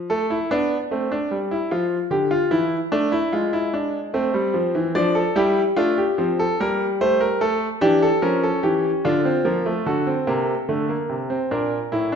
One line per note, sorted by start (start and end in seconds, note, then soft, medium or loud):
0.10 0.35 A3 medium
0.10 0.29 A4 medium
0.30 0.50 E4 medium
0.51 0.76 B3 medium
0.51 0.76 D4 medium
0.91 1.16 A3 medium
0.91 1.11 C4 medium
1.12 1.36 D4 medium
1.31 1.56 G3 medium
1.51 1.70 E4 medium
1.71 1.96 F3 medium
1.71 1.96 F4 medium
2.11 2.36 D3 medium
2.11 2.30 G4 medium
2.31 2.50 F4 medium
2.51 2.76 E3 medium
2.51 2.76 E4 medium
2.92 3.17 A3 medium
2.92 3.11 D4 medium
3.12 3.32 E4 medium
3.33 4.11 G#3 medium
3.33 3.52 F4 medium
3.53 3.72 E4 medium
3.74 3.98 D4 medium
4.14 4.33 A3 medium
4.14 4.92 C4 medium
4.34 4.54 G3 medium
4.54 4.74 F3 medium
4.75 4.94 E3 medium
4.95 5.20 F3 medium
4.95 5.20 D4 medium
4.95 5.15 D5 medium
5.15 5.35 A4 medium
5.36 5.61 G3 medium
5.36 5.61 E4 medium
5.36 5.61 G4 loud
5.76 6.02 A3 medium
5.76 6.02 D4 medium
5.76 5.96 F4 medium
5.98 6.23 G4 medium
6.18 6.43 F3 medium
6.18 6.43 C4 medium
6.39 6.58 A4 medium
6.60 7.39 G3 medium
6.60 6.85 A#3 medium
6.60 6.85 A#4 medium
7.01 7.26 A3 medium
7.01 7.20 C5 loud
7.21 7.40 A#4 medium
7.41 7.66 A3 medium
7.41 7.66 A4 medium
7.81 8.07 E3 medium
7.81 8.07 D4 medium
7.81 8.01 G4 loud
8.02 8.22 A4 medium
8.22 8.48 F3 medium
8.22 9.02 C#4 medium
8.22 8.42 A#4 medium
8.43 8.63 A4 medium
8.63 8.89 E3 medium
8.63 8.89 G4 medium
9.05 9.30 D3 medium
9.05 9.25 D4 medium
9.05 9.85 F4 medium
9.25 9.45 C4 medium
9.45 9.71 F3 medium
9.45 9.65 A#3 medium
9.66 9.86 A3 medium
9.86 10.12 D3 medium
9.86 10.07 F#4 medium
9.86 11.47 A4 medium
10.07 10.27 C4 medium
10.27 10.53 C3 medium
10.27 10.53 A#3 medium
10.69 10.94 D3 medium
10.69 10.89 A3 medium
10.89 11.15 A#3 medium
11.09 11.35 C3 medium
11.30 11.50 C4 medium
11.51 11.77 A#2 medium
11.51 11.77 D4 medium
11.51 12.15 A#4 medium
11.92 12.15 A2 medium
11.92 12.12 E4 medium
12.12 12.15 D4 medium